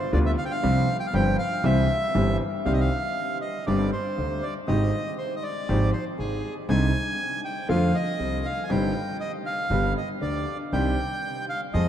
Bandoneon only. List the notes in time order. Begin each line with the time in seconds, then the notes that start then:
Already playing: C5
0.14 D5
0.26 E5
0.38 F5
0.45 G5
0.51 F5
1.00 G5
1.07 F5
1.14 G5
1.39 F5
1.65 E5
2.66 F5
2.73 D#5
2.80 F5
3.41 D#5
3.66 D5
3.92 C5
4.43 D5
4.67 D#5
5.18 C5
5.36 D#5
5.43 D5
5.93 C5
6.19 G#4
6.70 G#5
7.45 G5
7.70 F5
7.95 D#5
8.45 F5
8.64 G#5
8.71 G5
9.20 D#5
9.46 F5
9.97 D#5
10.22 D5
10.73 G5
11.49 F5
11.74 D#5